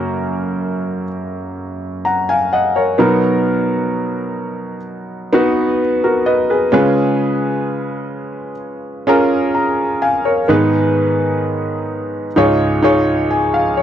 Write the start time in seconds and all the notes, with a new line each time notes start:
Already playing: F#2 C#3 A#3 C#4 F#4 A#4
2.05 F#5 A#5
2.29 F5 G#5
2.53 D#5 F#5
2.76 A#4 C#5
2.98 B2 F#3 B3 D#4 F#4 A#4
5.33 B3 D#4 F#4 B4
6.04 F#4 A#4
6.26 B4 D#5
6.50 G#4 B4
6.72 C#3 G#3 C#4 F4 G#4 B4
9.07 C#4 F4 G#4 A#4
9.55 A#5
10.02 F5 G#5
10.25 A#4 C#5
10.48 G#2 D#3 B3 D#4 G#4 B4
12.36 C#2 G#2 D#4 F4 G#4 C#5
12.82 D#4 F4 G#4 C#5
13.31 G#5
13.54 F5
13.77 C#5